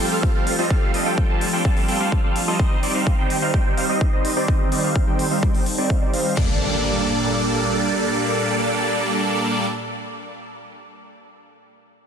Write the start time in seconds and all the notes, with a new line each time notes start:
Already playing: F3 A3 C4 G4
0.11 G3 C4 F4 A4 F5
0.23 kick
0.35 G3 C4 F4 A4 F5
0.47 open hi-hat
0.59 G3 C4 F4 A4 D#5
0.70 G3 C4 D4 F4 A4 F5, kick
0.94 G3 C4 F4 A4 D#5, open hi-hat
1.06 G3 C4 F4 A4 G5
1.18 kick
1.30 G3 C4 F4 A4 A5
1.41 open hi-hat
1.53 G3 C4 F4 A4 G5
1.65 G3 C4 F4 A4 A5, kick
1.77 open hi-hat
1.88 G3 C4 F4 A4 G5, open hi-hat
2.00 G3 C4 F4 A4 F5
2.12 kick
2.24 G3 C4 F4 A4 F5
2.36 open hi-hat
2.48 G3 C4 F4 A4 D#5
2.59 D#3 G3 C4, kick
2.83 G3 C4 D#4 C5 D5, open hi-hat
2.95 G3 C4 D#4 C5 F5
3.07 kick
3.19 G3 C4 D#4 C5 G5
3.30 open hi-hat
3.42 G3 C4 D#4 C5 F5
3.54 kick
3.77 G3 C4 D#4 C5 F5, open hi-hat
3.89 G3 C4 D#4 C5 D#5
4.01 kick
4.13 G3 C4 D#4 C5 D#5
4.25 open hi-hat
4.37 G3 C4 D#4 C5 D5
4.48 G3 C4 D#4 A4 C5, kick
4.72 G3 C4 D#4 C5 D5, open hi-hat
4.84 G3 C4 D#4 C5 F5
4.96 kick
5.07 G3 C4 D#4 C5 G5
5.19 open hi-hat
5.31 G3 C4 D#4 C5 F5
5.43 kick
5.55 open hi-hat
5.66 open hi-hat
5.78 G3 C4 D#4 C5 D5
5.90 G3 C4 D#4 C5 F5, kick
6.02 G3 C4 D#4 C5 D5
6.14 G3 C4 D#4 C5 F5, open hi-hat
6.37 A#2 G3 D4 A4 D5, kick, crash, impact